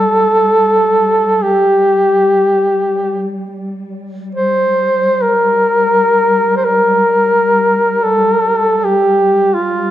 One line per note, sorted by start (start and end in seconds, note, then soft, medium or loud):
0.00 3.56 G3 soft
0.00 1.44 A4 medium
1.42 3.31 G4 medium
3.57 9.91 G3 soft
4.35 5.23 C5 medium
5.21 6.56 A#4 medium
6.57 6.66 C5 soft
6.65 8.05 A#4 medium
8.03 8.86 A4 medium
8.85 9.55 G4 medium
9.54 9.91 F4 medium